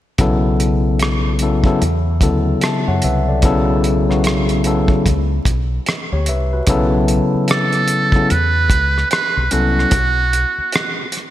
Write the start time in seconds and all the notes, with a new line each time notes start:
0.18 B1 C#3 F#3 B3 E4 A4, kick, closed hi-hat
0.60 closed hi-hat
0.99 cross-stick, closed hi-hat
1.39 C#3 F#3 B3 E4 A4, closed hi-hat
1.64 C#3 F#3 B3 E4 A4, kick
1.82 E2, closed hi-hat
2.21 D2 C#3 F#3 B3 E4 A4, kick, closed hi-hat
2.61 E5 A5, cross-stick, closed hi-hat
2.88 F#2 C#5 F#5
3.02 C2 B4 E5, closed hi-hat
3.28 A4 D5
3.42 B1 C#3 F#3 B3 E4 A4, kick, closed hi-hat
3.84 closed hi-hat
4.08 C#3 F#3 B3 E4 F#4, cross-stick
4.24 cross-stick, closed hi-hat
4.49 closed hi-hat
4.64 C#3 F#3 B3 E4 A4, closed hi-hat
4.88 kick
5.06 C#2, kick, closed hi-hat
5.45 B1, kick, closed hi-hat
5.86 cross-stick, closed hi-hat
6.12 D2 G4 C#5
6.26 C2 B4 E5, closed hi-hat
6.53 F#4 B4
6.67 B1 C#3 F#3 B3 E4 A4, kick, closed hi-hat
7.08 closed hi-hat
7.34 muted fingered electric bass stroke
7.48 A4, cross-stick, closed hi-hat
7.73 closed hi-hat
7.88 closed hi-hat
8.12 C#3 F#3 B3 E4 A4, kick
8.30 E2 B4, closed hi-hat
8.70 C#2, kick, closed hi-hat
8.98 cross-stick
9.11 B4, cross-stick, closed hi-hat
9.37 B1
9.51 C2 F#3 B3 C#4 E4 F#4 A4, closed hi-hat
9.79 cross-stick
9.91 B1, kick, closed hi-hat
10.33 closed hi-hat
10.58 muted fingered electric bass stroke
10.72 cross-stick, closed hi-hat
11.12 closed hi-hat
11.17 cross-stick